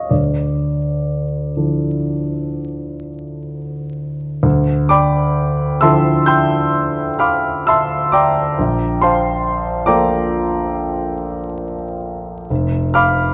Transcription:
0.00 0.13 C#5 medium
0.00 0.13 D#5 medium
0.00 0.13 F5 medium
0.10 1.51 D2 soft
0.10 2.99 D5 soft
1.56 4.41 D3 soft
1.56 4.41 F3 soft
1.56 4.41 E4 soft
1.56 4.41 A4 soft
4.43 5.78 D2 medium
4.89 5.79 D5 soft
4.89 5.78 G5 soft
4.89 5.78 B5 medium
4.89 5.82 D6 medium
5.81 8.54 D3 soft
5.81 8.54 F3 soft
5.81 8.54 E4 soft
5.81 8.54 A4 soft
5.81 6.25 E5 medium
5.81 6.24 A5 soft
5.81 6.24 C6 medium
5.81 6.26 E6 medium
6.26 7.16 G5 medium
6.26 7.16 C6 medium
6.26 7.16 E6 medium
6.26 7.20 G6 medium
7.19 7.64 F5 soft
7.19 7.64 B5 soft
7.19 7.64 D6 soft
7.19 7.67 F6 medium
7.67 8.11 E5 medium
7.67 8.11 A5 medium
7.67 8.11 C6 medium
7.67 8.13 E6 medium
8.12 8.98 D5 soft
8.12 8.98 G5 medium
8.12 8.98 A#5 soft
8.12 9.01 D6 medium
8.59 9.83 A#1 soft
9.02 9.84 C5 medium
9.02 9.84 F5 soft
9.02 9.83 A5 soft
9.02 9.87 C6 medium
9.86 12.46 F3 soft
9.86 12.47 A#3 soft
9.86 12.47 F4 soft
9.86 12.47 A4 soft
9.86 12.46 D5 soft
9.86 12.46 G5 soft
9.86 12.46 A#5 medium
9.86 12.50 D6 medium
12.50 13.34 F1 soft
12.94 13.34 F5 medium
12.94 13.34 B5 medium
12.94 13.34 D6 soft
12.94 13.34 F6 medium

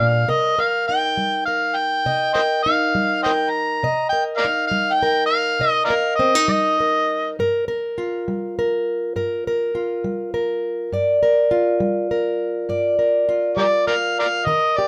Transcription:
0.00 0.29 A#2 medium
0.00 0.27 D4 medium
0.00 0.27 F4 medium
0.00 0.29 A#4 medium
0.00 0.31 F5 medium
0.29 0.83 C3 medium
0.29 0.58 A#4 medium
0.29 0.61 D#5 medium
0.59 1.47 A#4 medium
0.59 0.87 F5 medium
0.88 2.65 D#4 medium
0.88 1.44 G5 medium
1.17 1.71 G3 soft
1.45 2.35 A#4 medium
1.45 1.78 F5 medium
1.76 2.33 G5 loud
2.06 2.60 C3 medium
2.06 3.80 D#5 medium
2.34 3.26 A#4 medium
2.34 2.40 C5 medium
2.34 2.41 D#5 medium
2.34 2.62 G5 medium
2.63 3.81 D#4 medium
2.63 3.20 F5 medium
2.95 3.48 G3 medium
3.23 3.86 A#4 soft
3.23 3.31 C5 medium
3.23 3.31 D#5 medium
3.23 3.51 G5 medium
3.50 4.09 A#5 medium
3.83 4.37 C3 medium
3.83 5.60 D#5 medium
4.09 5.02 A#4 medium
4.09 4.24 G5 medium
4.37 4.45 A#4 medium
4.37 4.46 D5 medium
4.37 4.67 F5 medium
4.45 6.19 D#4 medium
4.67 4.95 F5 medium
4.71 5.25 G3 medium
4.93 5.26 G5 medium
5.03 5.90 A#4 medium
5.26 5.71 F5 loud
5.59 6.13 C3 medium
5.59 7.35 D#5 medium
5.71 5.84 D#5 loud
5.85 5.93 A#4 medium
5.85 5.91 D5 medium
5.85 6.15 F5 medium
5.90 6.80 A#4 medium
6.15 6.45 D#5 medium
6.19 6.35 C4 medium
6.35 7.38 D#4 soft
6.48 7.02 G3 medium
6.48 7.34 D#5 medium
6.80 7.39 A#4 soft
7.39 7.92 G2 medium
7.39 7.68 A#4 medium
7.68 8.58 A#4 medium
7.98 9.74 F4 medium
8.28 8.81 G3 medium
8.59 9.16 A#4 medium
9.16 9.69 G2 medium
9.16 9.47 A#4 medium
9.47 10.34 A#4 medium
9.75 10.89 F4 medium
10.04 10.57 G3 medium
10.34 11.22 A#4 medium
10.92 11.46 G2 medium
10.92 12.69 D5 medium
11.23 12.11 A#4 medium
11.51 13.28 F4 medium
11.80 12.34 G3 medium
12.11 12.98 A#4 medium
12.69 13.23 G2 medium
12.69 14.47 D5 medium
12.99 13.86 A#4 medium
13.29 14.44 F4 medium
13.57 14.11 G3 medium
13.57 13.64 G4 medium
13.57 13.65 A#4 medium
13.57 13.86 D5 medium
13.87 13.94 A#4 soft
13.87 14.44 A#4 soft
13.87 13.94 D5 soft
13.87 14.16 F5 medium
14.19 14.26 A#4 soft
14.19 14.27 D5 soft
14.19 14.47 F5 medium
14.46 14.88 D#3 medium
14.46 14.88 A#4 medium
14.46 14.78 D#5 medium
14.77 14.88 G4 medium
14.77 14.88 D5 medium

